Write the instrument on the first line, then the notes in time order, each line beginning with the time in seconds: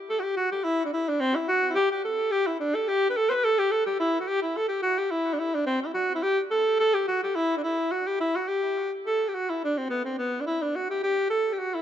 alto saxophone
0.09 A4
0.19 F#4 G4
0.36 F#4
0.52 G4
0.64 E4
0.85 D4
0.93 E4
1.08 D4
1.20 C4
1.33 E4 F#4
1.48 F#4
1.70 E4
1.75 G4
1.92 G4
2.05 A4
2.31 G4
2.47 E4
2.60 D4
2.75 A4
2.88 G4
3.10 B4
3.17 A4
3.29 B4 C5
3.44 A4
3.58 G4
3.71 A4
3.86 G4
4.00 E4
4.20 F#4
4.28 G4
4.42 E4
4.57 A4
4.68 G4
4.83 F#4
4.98 G4
5.11 E4
5.33 D4
5.39 E4
5.55 D4
5.66 C4
5.82 E4
5.94 F#4
6.15 E4
6.23 G4
6.51 A4
6.80 A4
6.94 G4
7.08 F#4
7.23 G4
7.35 E4
7.57 D4
7.64 E4
7.91 F#4
8.07 G4
8.20 E4
8.36 F#4
8.48 G4
9.06 A4
9.28 G4
9.35 F#4
9.50 E4
9.64 D4
9.78 C4
9.90 B3
10.05 C4
10.19 B3
10.41 D4
10.46 E4
10.62 D4
10.76 F#4
10.90 G4
11.03 G4
11.30 A4
11.53 G4
11.59 F#4
11.74 E4